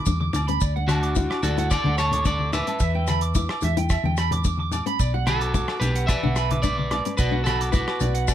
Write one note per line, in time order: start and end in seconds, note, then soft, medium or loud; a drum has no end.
0.06 0.31 E2 medium
0.06 0.31 D4 medium
0.06 0.19 D6 medium
0.06 kick medium
0.06 closed hi-hat soft
0.06 maracas medium
0.20 0.32 D6 medium
0.20 high conga medium
0.33 0.59 D2 medium
0.33 0.46 D6 medium
0.33 closed hi-hat soft
0.33 low conga medium
0.33 low agogo medium
0.33 maracas medium
0.48 0.60 C#4 medium
0.48 0.59 B5 medium
0.48 closed hi-hat soft
0.61 1.27 D2 medium
0.61 0.74 D5 medium
0.61 kick medium
0.61 closed hi-hat soft
0.61 maracas medium
0.76 1.00 D4 medium
0.76 0.87 F#5 medium
0.88 1.39 D4 medium
0.88 1.42 F#4 medium
0.88 1.01 A5 medium
0.88 cross-stick medium
0.88 closed hi-hat soft
0.88 high conga medium
0.88 low agogo medium
0.88 maracas medium
1.03 1.14 D6 medium
1.03 closed hi-hat soft
1.15 1.40 E4 medium
1.15 kick medium
1.15 closed hi-hat medium
1.15 maracas medium
1.30 1.42 D6 medium
1.30 cross-stick medium
1.30 low agogo medium
1.43 1.76 D2 medium
1.43 1.69 F#4 medium
1.43 1.69 A4 medium
1.43 1.56 D5 medium
1.43 closed hi-hat soft
1.43 low conga medium
1.43 maracas medium
1.57 1.81 E4 medium
1.57 1.70 F#5 medium
1.57 closed hi-hat medium
1.71 1.97 A4 medium
1.71 1.97 D5 loud
1.71 1.84 D5 medium
1.71 kick medium
1.71 cross-stick medium
1.71 closed hi-hat soft
1.71 low agogo medium
1.71 maracas loud
1.84 2.61 D2 medium
1.84 2.09 D4 medium
1.84 1.97 F#5 medium
1.84 high conga medium
1.98 2.24 A4 medium
1.98 2.23 C#5 medium
1.98 2.11 A5 medium
1.98 cross-stick medium
1.98 closed hi-hat soft
1.98 low agogo medium
1.98 maracas medium
2.12 2.24 D6 medium
2.12 closed hi-hat medium
2.12 high conga medium
2.12 low conga medium
2.25 2.49 D4 medium
2.25 2.52 A4 medium
2.25 2.53 D5 medium
2.25 2.38 D6 medium
2.25 kick medium
2.25 closed hi-hat medium
2.25 maracas medium
2.39 2.52 D6 medium
2.39 high conga medium
2.53 3.59 B4 medium
2.53 3.59 E5 medium
2.53 2.66 D6 medium
2.53 cross-stick medium
2.53 closed hi-hat soft
2.53 low conga medium
2.53 low agogo medium
2.53 maracas medium
2.67 2.79 C#4 medium
2.67 2.79 A5 medium
2.67 closed hi-hat soft
2.79 3.46 E2 loud
2.79 2.93 E5 medium
2.79 kick loud
2.79 closed hi-hat medium
2.79 maracas medium
2.95 3.18 D4 medium
2.95 3.06 G5 medium
3.07 3.20 B5 medium
3.07 cross-stick medium
3.07 closed hi-hat medium
3.07 high conga medium
3.07 low agogo medium
3.07 maracas medium
3.21 3.34 D6 medium
3.21 closed hi-hat medium
3.35 3.59 E4 medium
3.35 3.48 D6 medium
3.35 kick medium
3.35 closed hi-hat medium
3.35 maracas medium
3.49 3.61 D6 medium
3.49 cross-stick medium
3.49 low agogo medium
3.61 3.95 E2 loud
3.61 3.76 E5 medium
3.61 closed hi-hat medium
3.61 low conga medium
3.61 maracas medium
3.77 4.01 E4 medium
3.77 3.89 G5 medium
3.77 closed hi-hat medium
3.89 4.03 E5 medium
3.89 kick medium
3.89 cross-stick medium
3.89 closed hi-hat medium
3.89 low agogo medium
3.89 maracas medium
4.04 4.80 E2 medium
4.04 4.29 D4 medium
4.04 4.16 G5 medium
4.04 high conga medium
4.17 4.30 B5 medium
4.17 cross-stick medium
4.17 closed hi-hat soft
4.17 low agogo medium
4.17 maracas medium
4.31 4.44 D6 medium
4.31 closed hi-hat medium
4.31 high conga medium
4.31 low conga medium
4.44 4.69 D4 medium
4.44 4.57 D6 medium
4.44 kick medium
4.44 closed hi-hat soft
4.44 maracas medium
4.58 4.71 D6 medium
4.58 high conga medium
4.72 4.85 D6 medium
4.72 closed hi-hat medium
4.72 low conga medium
4.72 low agogo medium
4.72 maracas medium
4.86 4.98 C#4 medium
4.86 4.98 B5 medium
4.86 closed hi-hat soft
4.99 5.65 B1 medium
4.99 5.12 D5 medium
4.99 kick medium
4.99 closed hi-hat soft
4.99 maracas medium
5.14 5.38 F#4 medium
5.14 5.25 F#5 medium
5.27 5.79 F#4 medium
5.27 5.79 A4 medium
5.27 5.39 B5 medium
5.27 cross-stick medium
5.27 closed hi-hat soft
5.27 high conga medium
5.27 low agogo medium
5.27 maracas medium
5.41 5.53 D6 medium
5.41 closed hi-hat soft
5.54 5.67 D6 medium
5.54 muted nylon-string guitar stroke medium
5.54 kick medium
5.54 closed hi-hat soft
5.54 maracas medium
5.68 5.80 D6 medium
5.68 cross-stick medium
5.68 low agogo medium
5.80 6.14 B1 medium
5.80 6.07 G4 medium
5.80 6.08 B4 medium
5.80 muted clean electric guitar stroke medium
5.80 closed hi-hat soft
5.80 low conga medium
5.80 maracas medium
5.96 6.07 F#5 medium
5.96 closed hi-hat medium
6.07 6.60 B4 medium
6.07 6.21 D5 medium
6.07 6.62 E5 loud
6.07 kick medium
6.07 cross-stick medium
6.07 closed hi-hat medium
6.07 low agogo medium
6.07 maracas medium
6.23 6.99 B1 medium
6.23 6.47 D4 medium
6.23 6.35 F#5 medium
6.23 high conga medium
6.36 6.49 B5 medium
6.36 cross-stick medium
6.36 closed hi-hat soft
6.36 low agogo medium
6.36 maracas medium
6.51 6.63 D6 medium
6.51 closed hi-hat soft
6.51 high conga medium
6.51 low conga medium
6.62 6.88 D4 medium
6.62 7.15 B4 medium
6.62 7.14 D5 medium
6.62 6.76 D6 medium
6.62 kick medium
6.62 closed hi-hat medium
6.62 maracas medium
6.78 6.90 D6 medium
6.78 high conga medium
6.91 7.04 D6 medium
6.91 cross-stick medium
6.91 closed hi-hat medium
6.91 low conga medium
6.91 low agogo medium
7.05 7.18 C#4 medium
7.05 muted clean electric guitar stroke medium
7.05 closed hi-hat soft
7.17 7.85 B1 medium
7.17 7.45 F#4 medium
7.17 7.43 B4 medium
7.17 7.31 D5 medium
7.17 kick medium
7.17 closed hi-hat soft
7.17 maracas medium
7.31 7.56 D4 medium
7.31 7.44 F#5 medium
7.44 7.72 F#4 medium
7.44 7.72 A4 medium
7.44 7.58 B5 medium
7.44 cross-stick medium
7.44 closed hi-hat medium
7.44 high conga medium
7.44 low agogo medium
7.44 maracas medium
7.61 7.72 D6 medium
7.61 closed hi-hat medium
7.72 7.97 E4 medium
7.72 8.34 F#4 medium
7.72 8.34 B4 medium
7.72 7.86 D6 medium
7.72 kick medium
7.72 closed hi-hat soft
7.72 maracas medium
7.88 7.99 D6 medium
7.88 cross-stick medium
7.88 low agogo medium
8.00 8.34 B1 medium
8.00 8.13 D5 medium
8.00 closed hi-hat medium
8.00 low conga medium
8.00 maracas medium
8.14 8.26 F#5 medium
8.14 closed hi-hat medium
8.28 8.34 D5 medium
8.28 kick medium
8.28 cross-stick medium
8.28 closed hi-hat medium
8.28 low agogo medium
8.28 maracas medium